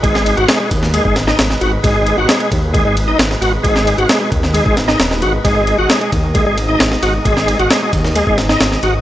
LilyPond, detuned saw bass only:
\new Staff \with { instrumentName = "Detuned saw bass" } { \clef bass \time 4/4 \key gis \minor \tempo 4 = 133 gis,,8. gis,,16 r8 dis,8. gis,,8. gis,,16 r16 gis,,16 r16 | gis,,8. gis,,16 r8 dis,8. gis,,8. gis,,16 r16 gis,,16 r16 | gis,,8. gis,,16 r8 dis,8. gis,,8. dis,,8 gis,,16 r16 | gis,,8. gis,,16 r8 dis,8. gis,,8. gis,,16 r16 gis,,16 r16 |
gis,,8. gis,,16 r8 dis,8. gis,,8. gis,,16 r16 gis,,16 r16 | }